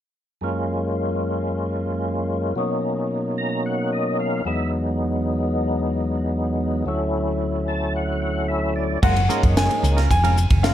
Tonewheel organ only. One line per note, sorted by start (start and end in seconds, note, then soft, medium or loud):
0.41 2.53 F#2 soft
0.41 2.53 G#3 soft
0.41 2.54 A#3 soft
0.41 2.54 C#4 soft
0.41 2.55 F4 medium
2.56 4.41 B2 medium
2.56 4.41 F#3 medium
2.56 4.42 A#3 soft
2.56 4.42 C#4 medium
2.56 4.43 D#4 medium
3.38 3.63 A#5 medium
3.66 3.91 F#5 medium
3.92 4.17 D#5 medium
4.19 4.44 F5 medium
4.45 6.84 E2 medium
4.45 6.84 F#3 soft
4.45 6.84 G#3 medium
4.45 6.85 B3 medium
4.45 6.85 D#4 medium
4.45 4.71 E5 medium
6.85 8.98 D2 medium
6.85 8.98 F#3 medium
6.85 8.99 A3 medium
6.85 8.99 C#4 medium
6.85 8.99 E4 medium
7.68 7.93 A5 medium
7.96 8.21 F#5 medium
8.22 8.47 F#5 medium
8.48 8.74 E5 medium
8.76 9.01 D5 medium
9.02 9.21 G#3 medium
9.02 9.21 A#3 soft
9.02 9.21 C#4 medium
9.02 9.21 F4 medium
9.28 10.01 G#3 medium
9.28 10.01 A#3 medium
9.28 10.01 C#4 medium
9.28 10.02 D#4 medium